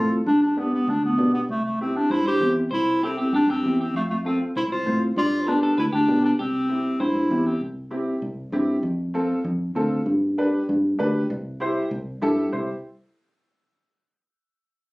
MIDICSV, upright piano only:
0, 0, Header, 1, 2, 480
1, 0, Start_track
1, 0, Key_signature, 0, "major"
1, 0, Tempo, 306435
1, 412, Time_signature, 4, 2, 24, 8
1, 23374, End_track
2, 0, Start_track
2, 0, Title_t, "Upright piano"
2, 0, Program_c, 0, 0
2, 0, Note_on_c, 0, 60, 74
2, 0, Note_on_c, 0, 65, 66
2, 0, Note_on_c, 0, 69, 87
2, 265, Note_off_c, 0, 60, 0
2, 267, Note_off_c, 0, 65, 0
2, 273, Note_off_c, 0, 69, 0
2, 883, Note_on_c, 0, 59, 74
2, 891, Note_on_c, 0, 62, 70
2, 902, Note_on_c, 0, 67, 84
2, 1224, Note_off_c, 0, 59, 0
2, 1228, Note_off_c, 0, 62, 0
2, 1233, Note_off_c, 0, 67, 0
2, 1848, Note_on_c, 0, 59, 68
2, 1848, Note_on_c, 0, 62, 72
2, 1854, Note_on_c, 0, 67, 78
2, 2186, Note_off_c, 0, 59, 0
2, 2186, Note_off_c, 0, 62, 0
2, 2189, Note_off_c, 0, 67, 0
2, 2829, Note_on_c, 0, 60, 70
2, 2830, Note_on_c, 0, 64, 66
2, 2836, Note_on_c, 0, 67, 84
2, 3156, Note_off_c, 0, 60, 0
2, 3157, Note_off_c, 0, 64, 0
2, 3160, Note_off_c, 0, 67, 0
2, 3776, Note_on_c, 0, 60, 71
2, 3783, Note_on_c, 0, 64, 62
2, 3789, Note_on_c, 0, 67, 81
2, 4110, Note_off_c, 0, 60, 0
2, 4113, Note_off_c, 0, 64, 0
2, 4116, Note_off_c, 0, 67, 0
2, 4727, Note_on_c, 0, 60, 72
2, 4730, Note_on_c, 0, 64, 67
2, 4745, Note_on_c, 0, 69, 73
2, 5065, Note_off_c, 0, 60, 0
2, 5066, Note_off_c, 0, 64, 0
2, 5074, Note_off_c, 0, 69, 0
2, 5689, Note_on_c, 0, 60, 73
2, 5692, Note_on_c, 0, 64, 62
2, 5702, Note_on_c, 0, 67, 80
2, 6025, Note_off_c, 0, 60, 0
2, 6027, Note_off_c, 0, 64, 0
2, 6032, Note_off_c, 0, 67, 0
2, 6648, Note_on_c, 0, 60, 69
2, 6663, Note_on_c, 0, 65, 68
2, 6664, Note_on_c, 0, 69, 80
2, 6984, Note_off_c, 0, 60, 0
2, 6992, Note_off_c, 0, 65, 0
2, 6992, Note_off_c, 0, 69, 0
2, 7612, Note_on_c, 0, 60, 73
2, 7616, Note_on_c, 0, 65, 61
2, 7619, Note_on_c, 0, 72, 76
2, 7946, Note_off_c, 0, 60, 0
2, 7948, Note_off_c, 0, 65, 0
2, 7949, Note_off_c, 0, 72, 0
2, 8577, Note_on_c, 0, 59, 73
2, 8584, Note_on_c, 0, 62, 71
2, 8595, Note_on_c, 0, 67, 81
2, 8908, Note_off_c, 0, 59, 0
2, 8911, Note_off_c, 0, 62, 0
2, 8917, Note_off_c, 0, 67, 0
2, 9516, Note_on_c, 0, 59, 72
2, 9524, Note_on_c, 0, 67, 78
2, 9527, Note_on_c, 0, 62, 63
2, 9858, Note_off_c, 0, 59, 0
2, 9861, Note_off_c, 0, 67, 0
2, 9863, Note_off_c, 0, 62, 0
2, 10478, Note_on_c, 0, 60, 75
2, 10485, Note_on_c, 0, 64, 69
2, 10488, Note_on_c, 0, 67, 83
2, 10818, Note_off_c, 0, 60, 0
2, 10822, Note_off_c, 0, 64, 0
2, 10824, Note_off_c, 0, 67, 0
2, 11440, Note_on_c, 0, 60, 68
2, 11449, Note_on_c, 0, 64, 67
2, 11458, Note_on_c, 0, 67, 78
2, 11779, Note_off_c, 0, 60, 0
2, 11784, Note_off_c, 0, 64, 0
2, 11789, Note_off_c, 0, 67, 0
2, 12383, Note_on_c, 0, 64, 79
2, 12389, Note_on_c, 0, 60, 83
2, 12394, Note_on_c, 0, 67, 83
2, 12732, Note_off_c, 0, 64, 0
2, 12734, Note_off_c, 0, 60, 0
2, 12737, Note_off_c, 0, 67, 0
2, 13359, Note_on_c, 0, 60, 87
2, 13366, Note_on_c, 0, 67, 94
2, 13368, Note_on_c, 0, 64, 77
2, 13700, Note_off_c, 0, 60, 0
2, 13704, Note_off_c, 0, 64, 0
2, 13704, Note_off_c, 0, 67, 0
2, 14316, Note_on_c, 0, 60, 91
2, 14325, Note_on_c, 0, 65, 76
2, 14329, Note_on_c, 0, 69, 96
2, 14659, Note_off_c, 0, 60, 0
2, 14664, Note_off_c, 0, 65, 0
2, 14665, Note_off_c, 0, 69, 0
2, 15275, Note_on_c, 0, 60, 83
2, 15283, Note_on_c, 0, 65, 76
2, 15289, Note_on_c, 0, 69, 97
2, 15619, Note_off_c, 0, 60, 0
2, 15623, Note_off_c, 0, 65, 0
2, 15626, Note_off_c, 0, 69, 0
2, 16261, Note_on_c, 0, 62, 84
2, 16267, Note_on_c, 0, 67, 73
2, 16267, Note_on_c, 0, 71, 93
2, 16592, Note_off_c, 0, 62, 0
2, 16595, Note_off_c, 0, 67, 0
2, 16595, Note_off_c, 0, 71, 0
2, 17209, Note_on_c, 0, 62, 84
2, 17211, Note_on_c, 0, 67, 82
2, 17221, Note_on_c, 0, 71, 104
2, 17546, Note_off_c, 0, 62, 0
2, 17547, Note_off_c, 0, 67, 0
2, 17552, Note_off_c, 0, 71, 0
2, 18172, Note_on_c, 0, 64, 94
2, 18180, Note_on_c, 0, 67, 83
2, 18191, Note_on_c, 0, 72, 98
2, 18508, Note_off_c, 0, 64, 0
2, 18512, Note_off_c, 0, 67, 0
2, 18517, Note_off_c, 0, 72, 0
2, 19134, Note_on_c, 0, 64, 84
2, 19141, Note_on_c, 0, 67, 84
2, 19152, Note_on_c, 0, 69, 98
2, 19468, Note_off_c, 0, 64, 0
2, 19472, Note_off_c, 0, 67, 0
2, 19477, Note_off_c, 0, 69, 0
2, 19616, Note_on_c, 0, 64, 77
2, 19619, Note_on_c, 0, 72, 85
2, 19620, Note_on_c, 0, 67, 72
2, 19836, Note_off_c, 0, 64, 0
2, 19838, Note_off_c, 0, 67, 0
2, 19838, Note_off_c, 0, 72, 0
2, 23374, End_track
0, 0, End_of_file